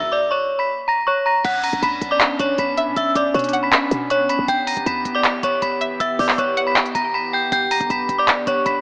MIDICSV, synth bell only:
0, 0, Header, 1, 2, 480
1, 0, Start_track
1, 0, Key_signature, 2, "minor"
1, 0, Tempo, 379747
1, 1826, Time_signature, 4, 2, 24, 8
1, 11136, End_track
2, 0, Start_track
2, 0, Title_t, "Synth bell"
2, 0, Program_c, 0, 98
2, 148, Note_on_c, 0, 86, 76
2, 158, Note_on_c, 0, 74, 64
2, 351, Note_off_c, 0, 86, 0
2, 357, Note_off_c, 0, 74, 0
2, 388, Note_on_c, 0, 85, 90
2, 398, Note_on_c, 0, 73, 63
2, 726, Note_off_c, 0, 85, 0
2, 731, Note_off_c, 0, 73, 0
2, 744, Note_on_c, 0, 83, 80
2, 754, Note_on_c, 0, 95, 62
2, 847, Note_off_c, 0, 83, 0
2, 853, Note_off_c, 0, 95, 0
2, 1110, Note_on_c, 0, 82, 80
2, 1120, Note_on_c, 0, 94, 62
2, 1312, Note_off_c, 0, 82, 0
2, 1318, Note_off_c, 0, 94, 0
2, 1349, Note_on_c, 0, 85, 83
2, 1359, Note_on_c, 0, 73, 65
2, 1552, Note_off_c, 0, 85, 0
2, 1558, Note_off_c, 0, 73, 0
2, 1590, Note_on_c, 0, 82, 79
2, 1600, Note_on_c, 0, 94, 57
2, 1792, Note_off_c, 0, 82, 0
2, 1798, Note_off_c, 0, 94, 0
2, 1826, Note_on_c, 0, 78, 99
2, 1837, Note_on_c, 0, 90, 84
2, 2030, Note_off_c, 0, 78, 0
2, 2036, Note_off_c, 0, 90, 0
2, 2067, Note_on_c, 0, 82, 81
2, 2077, Note_on_c, 0, 94, 62
2, 2271, Note_off_c, 0, 82, 0
2, 2276, Note_off_c, 0, 94, 0
2, 2310, Note_on_c, 0, 83, 82
2, 2319, Note_on_c, 0, 95, 68
2, 2647, Note_off_c, 0, 83, 0
2, 2652, Note_off_c, 0, 95, 0
2, 2667, Note_on_c, 0, 86, 84
2, 2677, Note_on_c, 0, 74, 67
2, 2769, Note_off_c, 0, 86, 0
2, 2775, Note_off_c, 0, 74, 0
2, 3028, Note_on_c, 0, 85, 82
2, 3038, Note_on_c, 0, 73, 71
2, 3231, Note_off_c, 0, 85, 0
2, 3237, Note_off_c, 0, 73, 0
2, 3269, Note_on_c, 0, 83, 76
2, 3279, Note_on_c, 0, 95, 60
2, 3719, Note_off_c, 0, 83, 0
2, 3725, Note_off_c, 0, 95, 0
2, 3749, Note_on_c, 0, 88, 108
2, 3759, Note_on_c, 0, 76, 81
2, 3952, Note_off_c, 0, 88, 0
2, 3958, Note_off_c, 0, 76, 0
2, 3991, Note_on_c, 0, 86, 87
2, 4002, Note_on_c, 0, 74, 64
2, 4193, Note_off_c, 0, 86, 0
2, 4199, Note_off_c, 0, 74, 0
2, 4226, Note_on_c, 0, 85, 88
2, 4237, Note_on_c, 0, 73, 67
2, 4565, Note_off_c, 0, 85, 0
2, 4570, Note_off_c, 0, 73, 0
2, 4586, Note_on_c, 0, 83, 86
2, 4597, Note_on_c, 0, 95, 67
2, 5150, Note_off_c, 0, 83, 0
2, 5156, Note_off_c, 0, 95, 0
2, 5186, Note_on_c, 0, 85, 99
2, 5197, Note_on_c, 0, 73, 70
2, 5390, Note_off_c, 0, 85, 0
2, 5396, Note_off_c, 0, 73, 0
2, 5427, Note_on_c, 0, 83, 85
2, 5437, Note_on_c, 0, 95, 62
2, 5631, Note_off_c, 0, 83, 0
2, 5637, Note_off_c, 0, 95, 0
2, 5668, Note_on_c, 0, 79, 101
2, 5678, Note_on_c, 0, 91, 83
2, 5871, Note_off_c, 0, 79, 0
2, 5877, Note_off_c, 0, 91, 0
2, 5903, Note_on_c, 0, 82, 85
2, 5913, Note_on_c, 0, 94, 58
2, 6109, Note_off_c, 0, 82, 0
2, 6114, Note_off_c, 0, 94, 0
2, 6149, Note_on_c, 0, 83, 85
2, 6159, Note_on_c, 0, 95, 68
2, 6486, Note_off_c, 0, 83, 0
2, 6492, Note_off_c, 0, 95, 0
2, 6505, Note_on_c, 0, 86, 83
2, 6515, Note_on_c, 0, 74, 67
2, 6608, Note_off_c, 0, 86, 0
2, 6613, Note_off_c, 0, 74, 0
2, 6867, Note_on_c, 0, 85, 76
2, 6877, Note_on_c, 0, 73, 66
2, 7071, Note_off_c, 0, 85, 0
2, 7077, Note_off_c, 0, 73, 0
2, 7107, Note_on_c, 0, 83, 92
2, 7116, Note_on_c, 0, 95, 66
2, 7558, Note_off_c, 0, 83, 0
2, 7563, Note_off_c, 0, 95, 0
2, 7586, Note_on_c, 0, 88, 110
2, 7596, Note_on_c, 0, 76, 80
2, 7790, Note_off_c, 0, 88, 0
2, 7796, Note_off_c, 0, 76, 0
2, 7828, Note_on_c, 0, 86, 90
2, 7838, Note_on_c, 0, 74, 64
2, 8031, Note_off_c, 0, 86, 0
2, 8037, Note_off_c, 0, 74, 0
2, 8066, Note_on_c, 0, 85, 83
2, 8076, Note_on_c, 0, 73, 71
2, 8405, Note_off_c, 0, 85, 0
2, 8410, Note_off_c, 0, 73, 0
2, 8427, Note_on_c, 0, 83, 84
2, 8437, Note_on_c, 0, 95, 64
2, 8529, Note_off_c, 0, 83, 0
2, 8535, Note_off_c, 0, 95, 0
2, 8783, Note_on_c, 0, 82, 87
2, 8793, Note_on_c, 0, 94, 61
2, 8989, Note_off_c, 0, 82, 0
2, 8994, Note_off_c, 0, 94, 0
2, 9028, Note_on_c, 0, 83, 82
2, 9037, Note_on_c, 0, 95, 61
2, 9231, Note_off_c, 0, 83, 0
2, 9237, Note_off_c, 0, 95, 0
2, 9269, Note_on_c, 0, 79, 82
2, 9280, Note_on_c, 0, 91, 65
2, 9472, Note_off_c, 0, 79, 0
2, 9478, Note_off_c, 0, 91, 0
2, 9506, Note_on_c, 0, 79, 99
2, 9516, Note_on_c, 0, 91, 84
2, 9710, Note_off_c, 0, 79, 0
2, 9716, Note_off_c, 0, 91, 0
2, 9748, Note_on_c, 0, 82, 82
2, 9757, Note_on_c, 0, 94, 61
2, 9951, Note_off_c, 0, 82, 0
2, 9957, Note_off_c, 0, 94, 0
2, 9988, Note_on_c, 0, 83, 83
2, 9998, Note_on_c, 0, 95, 70
2, 10326, Note_off_c, 0, 83, 0
2, 10331, Note_off_c, 0, 95, 0
2, 10346, Note_on_c, 0, 86, 78
2, 10355, Note_on_c, 0, 74, 63
2, 10448, Note_off_c, 0, 86, 0
2, 10454, Note_off_c, 0, 74, 0
2, 10707, Note_on_c, 0, 85, 86
2, 10717, Note_on_c, 0, 73, 67
2, 10910, Note_off_c, 0, 85, 0
2, 10916, Note_off_c, 0, 73, 0
2, 10943, Note_on_c, 0, 83, 72
2, 10953, Note_on_c, 0, 95, 62
2, 11136, Note_off_c, 0, 83, 0
2, 11136, Note_off_c, 0, 95, 0
2, 11136, End_track
0, 0, End_of_file